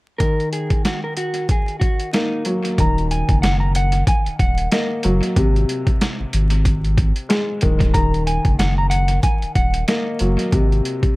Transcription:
0.18 upright piano D#3, clean electric guitar A#4, kick, closed hi-hat
0.40 closed hi-hat
0.53 clean electric guitar G#4, closed hi-hat
0.70 kick, closed hi-hat
0.85 clean electric guitar F#4, snare, closed hi-hat
1.04 clean electric guitar A#4
1.17 clean electric guitar F#4, closed hi-hat
1.34 closed hi-hat
1.49 clean electric guitar G#4, kick, closed hi-hat
1.68 closed hi-hat
1.80 clean electric guitar F#4, kick, closed hi-hat
2.00 closed hi-hat
2.13 upright piano A#3, clean electric guitar D#4, snare, closed hi-hat
2.45 upright piano F#3, closed hi-hat
2.65 closed hi-hat
2.78 sub bass D#1, upright piano D#3, clean electric guitar A#5, kick, closed hi-hat
2.98 closed hi-hat
3.11 clean electric guitar G#5, closed hi-hat
3.29 sub bass F#1, kick, closed hi-hat
3.42 clean electric guitar F#5, snare, closed hi-hat
3.60 clean electric guitar A#5
3.75 clean electric guitar F#5, closed hi-hat
3.92 closed hi-hat
4.07 clean electric guitar G#5, kick, closed hi-hat
4.26 sub bass D#1, closed hi-hat
4.39 sub bass D#1, clean electric guitar F#5, kick, closed hi-hat
4.58 closed hi-hat
4.72 upright piano A#3, clean electric guitar D#5, snare, closed hi-hat
5.03 sub bass F#1, upright piano F#3, closed hi-hat
5.23 closed hi-hat
5.36 sub bass G#1, upright piano C3, kick, closed hi-hat
5.56 closed hi-hat
5.69 closed hi-hat
5.87 kick, closed hi-hat
6.01 snare, closed hi-hat
6.20 sub bass G#1
6.33 sub bass G#1, closed hi-hat
6.50 closed hi-hat
6.65 kick, closed hi-hat
6.84 closed hi-hat
6.98 kick, closed hi-hat
7.16 closed hi-hat
7.29 upright piano G#3, snare, closed hi-hat
7.61 sub bass D1, upright piano D#3, kick, closed hi-hat
7.80 kick, closed hi-hat
7.94 sub bass D#1, upright piano D#3, clean electric guitar A#5, kick, closed hi-hat
8.14 closed hi-hat
8.27 clean electric guitar G#5, closed hi-hat
8.45 sub bass F#1, kick, closed hi-hat
8.59 clean electric guitar F#5, snare, closed hi-hat
8.78 clean electric guitar A#5
8.90 clean electric guitar F#5, closed hi-hat
9.08 closed hi-hat
9.23 clean electric guitar G#5, kick, closed hi-hat
9.42 sub bass D#1, closed hi-hat
9.55 sub bass D#1, clean electric guitar F#5, kick, closed hi-hat
9.74 closed hi-hat
9.88 upright piano A#3, clean electric guitar D#5, snare, closed hi-hat
10.19 sub bass F#1, upright piano F#3, closed hi-hat
10.39 closed hi-hat
10.52 sub bass G#1, upright piano C3, kick, closed hi-hat
10.72 closed hi-hat
10.85 closed hi-hat
11.03 kick, closed hi-hat

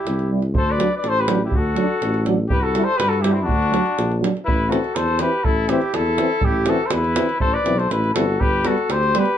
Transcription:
Already playing: trumpet E4, cornet G4
0.07 tuba C2, davul high
0.19 davul high
0.31 euphonium G3, french horn E4
0.42 davul high
0.55 tuba D2, trumpet A4, cornet C5, davul low
0.70 trumpet B4, cornet D5
0.78 euphonium F#3, french horn D4, davul high
0.95 trumpet B4, cornet D5
1.04 tuba A1, trumpet A4, davul high
1.09 cornet C5
1.17 trumpet G4, cornet B4, davul high
1.27 euphonium F#3, french horn D4, davul high
1.45 trumpet E4, cornet G4
1.52 tuba D2, trumpet F#4, davul low
1.59 cornet A4
1.75 euphonium F#3, davul high
1.79 french horn D4
2.02 tuba A1, davul high
2.14 davul high
2.25 euphonium F#3, french horn D4, davul high
2.49 tuba C2, trumpet G4, cornet B4, davul low
2.61 trumpet F#4, cornet A4
2.75 euphonium G3, french horn E4, davul high
2.84 trumpet A4, cornet C5
2.96 tuba G2, trumpet G4, cornet B4, davul high
3.08 trumpet F#4, cornet A4
3.13 davul high
3.20 euphonium G3, trumpet E4, cornet G4, davul high
3.25 french horn E4
3.32 trumpet C4, cornet E4
3.43 trumpet D4, cornet F#4
3.49 tuba D2, davul low
3.62 davul high
3.71 euphonium F#3, french horn D4, davul high
3.86 davul high
3.98 tuba A#1, davul high
4.12 davul high
4.21 euphonium F#3, french horn D4, davul high
4.37 davul high
4.45 tuba A1, trumpet E4, cornet B4, davul low
4.69 euphonium E3, french horn C4, trumpet F#4, cornet A4, davul high
4.84 davul high
4.95 tuba E2, trumpet A4, cornet C5, davul high
5.08 davul high
5.19 euphonium E3, french horn C4, trumpet G4, cornet B4, davul high
5.32 davul high
5.44 tuba A1, trumpet E4, cornet A4, davul low
5.68 euphonium E3, french horn C4, trumpet E4, cornet G4, davul high
5.82 davul high
5.94 tuba E2, trumpet E4, cornet A4, davul high
6.06 davul high
6.18 euphonium E3, french horn C4, davul high
6.41 tuba A1, trumpet E4, cornet G4, davul low
6.66 euphonium E3, french horn C4, trumpet F#4, cornet A4, davul high
6.85 trumpet A4, cornet C5
6.91 tuba E2, trumpet E4, cornet B4, davul high
7.04 davul high
7.15 euphonium E3, french horn C4, davul high
7.29 davul high
7.40 tuba A1, trumpet A4, cornet C5, davul low
7.53 trumpet B4, cornet D5
7.65 tuba B1, euphonium E3, french horn C4, davul high
7.79 trumpet A4, cornet C5, davul high
7.89 tuba A1, trumpet E4, cornet B4, davul high
8.04 davul high
8.14 tuba G1, euphonium E3, french horn C4, trumpet F#4, cornet A4, davul high
8.40 tuba G1, trumpet G4, cornet B4, davul low
8.65 euphonium G3, french horn B3, trumpet F#4, cornet A4, davul high
8.78 davul high
8.90 tuba D2, trumpet G4, cornet C5, davul high
9.03 davul high
9.14 euphonium G3, french horn B3, trumpet G4, cornet B4, davul high
9.26 davul high

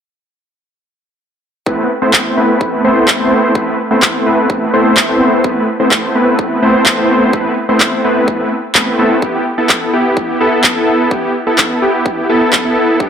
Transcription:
1.66 supersaw synth A3 B3 C4 E4 B4, kick
2.02 supersaw synth A3 B3 C4 E4 C5
2.13 kick, clap
2.37 supersaw synth A3 B3 C4 E4 B4
2.61 kick
2.84 supersaw synth A3 B3 C4 E4 C5
3.08 kick, clap
3.20 supersaw synth A3 B3 C4 E4 C5
3.55 supersaw synth A3 B3 C4 E4 B4, kick
3.91 supersaw synth A3 B3 C4 E4 C5
4.02 kick, clap
4.26 supersaw synth A3 B3 C4 E4 B4
4.50 kick
4.74 supersaw synth A3 B3 C4 E4 C5
4.97 kick, clap
5.09 supersaw synth A3 B3 C4 E4 C5
5.44 supersaw synth A3 B3 C4 E4 B4, kick
5.80 supersaw synth A3 B3 C4 E4 C5
5.91 kick, clap
6.15 supersaw synth A3 B3 C4 E4 B4
6.39 kick
6.62 supersaw synth A3 B3 C4 E4 C5
6.86 kick, clap
6.98 supersaw synth A3 B3 C4 E4 C5
7.33 supersaw synth A3 B3 C4 E4 B4, kick
7.69 supersaw synth A3 B3 C4 E4 C5
7.80 kick, clap
8.04 supersaw synth A3 B3 C4 E4 B4
8.28 kick
8.75 supersaw synth A3 B3 C4 E4 B4, kick, clap
8.99 supersaw synth A3 B3 C4 E4 A4
9.22 supersaw synth B3 E4 G4, kick
9.58 supersaw synth B3 E4 A4
9.69 kick, clap
9.93 supersaw synth B3 E4 G4
10.17 kick
10.41 supersaw synth B3 E4 A4
10.64 kick, clap
10.76 supersaw synth B3 E4 A4
11.11 supersaw synth B3 E4 G4, kick
11.47 supersaw synth B3 E4 A4
11.58 kick, clap
11.82 supersaw synth B3 E4 G4
12.06 kick
12.29 supersaw synth B3 E4 A4
12.53 kick, clap
12.65 supersaw synth B3 E4 A4
13.00 supersaw synth B3 D4 G4, kick

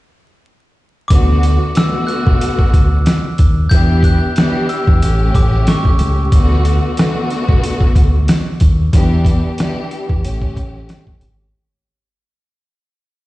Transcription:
1.08 fingered electric bass D2, string section D3 A3 B3, glockenspiel D6, kick, closed hi-hat
1.12 string section F#4
1.30 snare
1.43 closed hi-hat
1.73 string section D3 A3 B3 F#4, glockenspiel E6, cross-stick, snare, closed hi-hat
2.07 glockenspiel F#6, closed hi-hat
2.27 fingered electric bass B1, kick
2.41 closed hi-hat
2.59 kick
2.74 fingered electric bass D2, kick, closed hi-hat
3.06 cross-stick, snare, closed hi-hat
3.38 fingered electric bass D#2, kick, closed hi-hat
3.69 fingered electric bass E2, string section E3 B3 D4 G4, glockenspiel G6, kick, closed hi-hat
4.03 glockenspiel F#6, kick, closed hi-hat
4.35 string section E3 B3 D4 G4, cross-stick, snare, closed hi-hat
4.69 glockenspiel E6, closed hi-hat
4.87 fingered electric bass E2, kick
5.01 fingered electric bass A1, string section A2 A3 C#4 G4, closed hi-hat
5.34 fingered electric bass A1, glockenspiel D6, kick, closed hi-hat
5.53 snare
5.67 glockenspiel C#6, cross-stick, snare, closed hi-hat
5.85 kick
5.99 fingered electric bass C#2, closed hi-hat
6.32 fingered electric bass D2, string section D3 A3 B3 F#4, kick, closed hi-hat
6.52 snare
6.65 closed hi-hat
6.95 string section D3 A3 B3 F#4, closed hi-hat
6.99 cross-stick, snare
7.30 closed hi-hat
7.49 fingered electric bass B1, kick
7.64 closed hi-hat
7.81 kick
7.95 fingered electric bass D2, kick, closed hi-hat
8.28 cross-stick, snare, closed hi-hat
8.60 fingered electric bass D#2, kick, closed hi-hat
8.93 fingered electric bass E2, string section E3 B3 D4 G4, kick, closed hi-hat
9.25 kick, closed hi-hat
9.57 string section E3 B3 D4 G4, cross-stick, snare, closed hi-hat
9.91 closed hi-hat
10.09 fingered electric bass E2, kick
10.23 fingered electric bass A1, string section A2 A3 C#4 G4, closed hi-hat
10.42 kick
10.56 fingered electric bass A1, kick, closed hi-hat
10.75 snare
10.89 cross-stick, snare, closed hi-hat
11.07 kick
11.21 fingered electric bass G#1, closed hi-hat

